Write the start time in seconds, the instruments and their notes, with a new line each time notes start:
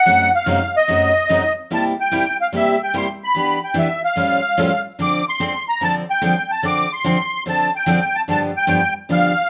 Already playing: accordion F#5
0.06 steel-string acoustic guitar F#2 C3 F#3 A3 D#4 F#4
0.35 accordion F5
0.46 steel-string acoustic guitar F#2 C3 F#3 A3 D#4 F#4
0.77 accordion D#5
0.88 steel-string acoustic guitar F#2 C3 F#3 A3 D#4 F#4
1.29 steel-string acoustic guitar F#2 C3 F#3 A3 D#4 F#4
1.71 steel-string acoustic guitar C3 G3 A#3 E4 G4, accordion A5
2.01 accordion G5
2.11 steel-string acoustic guitar C3 G3 A#3 E4 G4
2.41 accordion F5
2.52 steel-string acoustic guitar C3 G3 A#3 E4 G4, accordion E5
2.83 accordion G5
2.94 steel-string acoustic guitar C3 G3 A#3 E4 G4, accordion C6
3.24 accordion B5
3.35 steel-string acoustic guitar E3 B3 D4 G4
3.64 accordion G5
3.74 steel-string acoustic guitar E3 B3 D4 G4
3.79 accordion E5
4.05 accordion F5
4.16 steel-string acoustic guitar A2 F3 G3 C#4 F4 A4
4.58 steel-string acoustic guitar A2 F3 G3 C#4 F4 A4
4.99 steel-string acoustic guitar D3 F3 C4 D4 A4, accordion D6
5.29 accordion C6
5.40 steel-string acoustic guitar D3 F3 C4 D4 A4
5.69 accordion A#5
5.81 steel-string acoustic guitar D3 F3 C4 D4 A4, accordion A5
6.10 accordion G5
6.22 steel-string acoustic guitar D3 F3 C4 D4 A4
6.51 accordion A5
6.63 steel-string acoustic guitar D3 F3 C4 D4 A4, accordion D6
6.93 accordion C6
7.04 steel-string acoustic guitar D3 F3 C4 D4 A4
7.46 steel-string acoustic guitar D3 F3 C4 D4 A4, accordion A5
7.76 accordion G5
7.86 steel-string acoustic guitar D3 F3 C4 D4 A4
8.16 accordion A5
8.28 steel-string acoustic guitar G2 D3 F3 B3 D4 G4, accordion A5
8.57 accordion G5
8.67 steel-string acoustic guitar G2 D3 F3 B3 D4 G4
9.09 steel-string acoustic guitar G2 D3 F3 B3 D4 G4, accordion F5